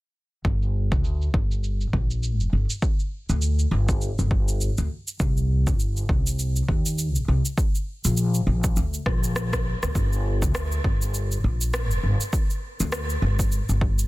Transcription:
0.45 upright bass G1, kick, cabasa
0.62 cabasa
0.92 upright bass D2, kick, cabasa
1.04 cabasa
1.22 cabasa
1.34 upright bass G1, kick
1.51 cabasa
1.64 cabasa
1.81 cabasa
1.93 upright bass A#1, kick
2.11 cabasa
2.23 cabasa
2.40 upright bass F1, cabasa
2.53 upright bass G1
2.70 cabasa
2.82 kick, cabasa
3.00 cabasa
3.29 upright bass D2, cabasa
3.42 cabasa
3.59 cabasa
3.71 upright bass G1
3.89 kick, cabasa
4.01 cabasa
4.19 upright bass G1, cabasa
4.31 kick
4.48 cabasa
4.61 cabasa
4.78 upright bass D2, cabasa
5.08 cabasa
5.20 upright bass C2, kick, cabasa
5.37 cabasa
5.67 upright bass G1, kick, cabasa
5.79 cabasa
5.97 cabasa
6.09 upright bass C2, kick
6.27 cabasa
6.39 cabasa
6.56 cabasa
6.68 upright bass D#2, kick
6.86 cabasa
6.98 cabasa
7.15 upright bass A#1, cabasa
7.28 upright bass C2
7.45 cabasa
7.58 kick, cabasa
7.75 cabasa
8.05 upright bass A#1, cabasa
8.17 cabasa
8.34 cabasa
8.47 upright bass A#1
8.64 kick, cabasa
8.76 upright bass D2, cabasa
8.94 cabasa
9.06 upright bass A#1, kick, cross-stick
9.24 cabasa
9.36 cross-stick, cabasa
9.53 kick, cross-stick, cabasa
9.83 upright bass D2, cross-stick, cabasa
9.95 upright bass G1, kick, cabasa
10.13 cabasa
10.42 upright bass D2, kick, cabasa
10.55 cross-stick, cabasa
10.72 cabasa
10.84 upright bass G1, kick
11.02 cabasa
11.14 cabasa
11.32 cabasa
11.44 upright bass A#1
11.61 cabasa
11.74 cross-stick, cabasa
11.91 upright bass F1, cabasa
12.03 upright bass G1
12.21 cabasa
12.33 kick, cabasa
12.50 cabasa
12.80 upright bass D2, cabasa
12.92 cross-stick, cabasa
13.10 cabasa
13.22 upright bass G1
13.39 kick, cabasa
13.52 cabasa
13.69 upright bass G1, cabasa
13.81 kick
13.99 cabasa

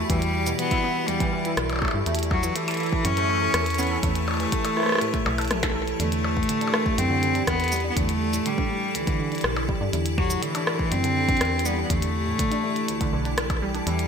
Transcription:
Already playing: ambient pad E3 E4 F#4 G4 D5
0.10 fm bass E2, synth pluck E3, cello G3, kick, closed hi-hat
0.22 closed hi-hat
0.47 synth pluck B2, closed hi-hat, cabasa
0.59 synth pluck E3, cello B3, closed hi-hat
0.71 synth pluck E4, kick, closed hi-hat
0.84 synth pluck B3
1.08 synth pluck E2, cello G3, closed hi-hat
1.20 synth pluck E3, kick, closed hi-hat
1.33 synth pluck E3
1.45 synth pluck E4, closed hi-hat
1.57 fm bass B1, cross-stick, closed hi-hat
1.70 closed hi-hat, percussion blips
1.73 percussion blips
1.76 percussion blips
1.79 percussion blips
1.82 synth pluck A3, kick, percussion blips
1.85 percussion blips
1.88 percussion blips
1.91 fm bass G2, synth pluck E4, percussion blips
2.06 fm bass E2, ambient pad E3 E4 G4 A4 B4 C#5, synth pluck A3, closed hi-hat
2.15 closed hi-hat
2.19 closed hi-hat
2.23 closed hi-hat
2.31 cello F#3, kick, percussion blips
2.43 synth pluck E3, closed hi-hat, cabasa
2.56 cello E3, synth pluck A3, closed hi-hat
2.68 synth pluck A4, closed hi-hat, percussion blips
2.71 closed hi-hat
2.74 closed hi-hat
2.77 synth pluck E4, closed hi-hat
2.80 closed hi-hat
2.83 closed hi-hat
2.86 closed hi-hat
2.89 kick, closed hi-hat
3.05 fm bass F#2, synth pluck A2, cello C#4, closed hi-hat
3.17 synth pluck A3, closed hi-hat
3.29 synth pluck A3
3.42 synth pluck A4
3.54 fm bass E2, cross-stick, closed hi-hat
3.66 closed hi-hat
3.70 closed hi-hat
3.74 closed hi-hat
3.79 cello B3, synth pluck C#4, closed hi-hat, cabasa
3.83 closed hi-hat
3.87 closed hi-hat
3.91 synth pluck A4
4.03 fm bass E2, synth pluck A3, cello A3, kick, closed hi-hat
4.15 closed hi-hat
4.28 percussion blips
4.31 percussion blips
4.34 percussion blips
4.37 synth pluck E3, closed hi-hat, percussion blips
4.40 percussion blips
4.43 percussion blips
4.46 percussion blips
4.49 synth pluck A3, kick, closed hi-hat, percussion blips
4.64 synth pluck A4, closed hi-hat, percussion blips
4.77 synth pluck E4, cross-stick
4.80 cross-stick
4.83 cross-stick
4.86 cross-stick
4.89 cross-stick
4.92 cross-stick
4.95 cross-stick
4.98 synth pluck A2, cross-stick, closed hi-hat
5.14 synth pluck A3, kick, closed hi-hat
5.26 fm bass B1, synth pluck A3, percussion blips
5.38 synth pluck A4, closed hi-hat, percussion blips
5.41 closed hi-hat
5.45 closed hi-hat
5.48 synth pluck A3, cross-stick, closed hi-hat
5.51 closed hi-hat, high tom
5.57 closed hi-hat
5.60 synth pluck A4, snare, closed hi-hat
5.63 kick, closed hi-hat, percussion blips
5.75 synth pluck A4
5.88 closed hi-hat
6.00 fm bass E2, synth pluck D3, ambient pad E3 E4 D5, cello A3, closed hi-hat
6.12 closed hi-hat
6.24 percussion blips
6.37 synth pluck A2, kick
6.43 closed hi-hat
6.49 synth pluck D3, closed hi-hat
6.61 synth pluck D4, closed hi-hat
6.67 percussion blips
6.74 synth pluck A3, cross-stick
6.86 kick
6.98 synth pluck D2, fm bass F#2, cello C4, closed hi-hat
7.10 synth pluck D3
7.23 synth pluck D3, closed hi-hat
7.35 synth pluck D4, closed hi-hat
7.47 fm bass E2, cello B3, kick, cross-stick, closed hi-hat
7.60 closed hi-hat
7.64 closed hi-hat
7.68 closed hi-hat
7.72 synth pluck G3, closed hi-hat, cabasa
7.76 closed hi-hat
7.80 closed hi-hat
7.84 synth pluck D4
7.90 cello B3
7.97 fm bass E2, synth pluck D3, cello A3, kick, closed hi-hat
8.09 closed hi-hat
8.33 synth pluck A2, closed hi-hat, cabasa
8.46 synth pluck D3, cello G3, closed hi-hat
8.58 synth pluck D4, kick
8.70 synth pluck A3
8.95 synth pluck D2, cello E3, closed hi-hat
9.07 synth pluck D3, kick, closed hi-hat
9.20 synth pluck D3
9.32 synth pluck D4, closed hi-hat
9.35 closed hi-hat
9.38 closed hi-hat
9.41 fm bass B1, cross-stick, closed hi-hat
9.56 percussion blips
9.69 synth pluck G3, kick
9.81 fm bass G2, synth pluck D4
9.93 fm bass E2, synth pluck D3, closed hi-hat
10.06 closed hi-hat
10.18 cello F#3, kick, percussion blips
10.30 synth pluck A2, closed hi-hat, cabasa
10.42 synth pluck D3, cello E3, closed hi-hat
10.55 synth pluck D4, closed hi-hat, percussion blips
10.67 synth pluck A3, cross-stick
10.79 kick
10.92 synth pluck D2, fm bass F#2, cello C4, closed hi-hat
11.04 synth pluck D3, closed hi-hat
11.16 synth pluck D3
11.28 synth pluck D4, kick, closed hi-hat
11.37 fm bass E2, closed hi-hat
11.41 cross-stick, closed hi-hat
11.45 closed hi-hat
11.59 closed hi-hat
11.65 synth pluck G3, cello B3, cabasa
11.78 synth pluck D4
11.83 cello B3
11.90 fm bass E2, synth pluck D3, cello A3, kick, closed hi-hat
12.02 closed hi-hat
12.27 synth pluck A2
12.39 synth pluck D3, kick, closed hi-hat
12.52 synth pluck D4, closed hi-hat
12.64 synth pluck A3
12.76 closed hi-hat
12.88 synth pluck D2, closed hi-hat
13.01 synth pluck D3, kick, closed hi-hat
13.13 fm bass B1, synth pluck D3
13.25 synth pluck D4, closed hi-hat
13.38 cross-stick, closed hi-hat
13.50 kick, closed hi-hat, percussion blips
13.62 synth pluck G3
13.75 synth pluck D4, closed hi-hat
13.87 fm bass E2, synth pluck E3, cello G3, ambient pad F#4 G4 D5, closed hi-hat
13.99 closed hi-hat

